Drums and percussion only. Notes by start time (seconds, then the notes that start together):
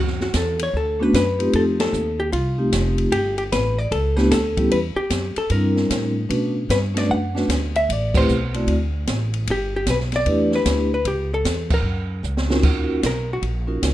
0.07 snare
0.20 snare
0.34 kick, snare, hi-hat pedal, ride
0.59 ride
0.74 kick
1.14 kick, snare, hi-hat pedal, ride
1.40 ride
1.53 kick, ride
1.80 snare, ride
1.94 hi-hat pedal
2.33 kick, ride
2.73 kick, snare, hi-hat pedal, ride
2.98 ride
3.12 kick, ride
3.38 ride
3.52 kick, snare, hi-hat pedal, ride
3.92 kick, ride
4.18 snare
4.31 kick, snare, hi-hat pedal, ride
4.57 kick, ride
4.71 kick, ride
5.10 kick, snare, hi-hat pedal, ride
5.36 ride
5.50 kick, ride
5.76 snare
5.90 kick, snare, hi-hat pedal, ride
6.30 kick, ride
6.70 kick, snare, hi-hat pedal, ride
6.97 snare, ride
7.10 kick
7.36 snare
7.49 kick, snare, hi-hat pedal, ride
7.76 ride
7.89 kick, ride
8.14 kick, crash
8.29 hi-hat pedal
8.54 ride
8.68 kick, ride
9.07 kick, snare, hi-hat pedal, ride
9.34 ride
9.47 kick, ride
9.87 kick, snare, hi-hat pedal, ride
10.00 snare
10.12 snare, ride
10.26 kick, ride
10.52 snare
10.66 kick, snare, hi-hat pedal, ride
11.05 kick, ride
11.45 kick, snare, hi-hat pedal, ride
11.70 kick, crash
12.24 hi-hat pedal
12.37 snare
12.50 snare
12.63 kick, crash
13.03 kick, snare, hi-hat pedal, ride
13.43 kick, ride
13.82 kick, snare, hi-hat pedal, ride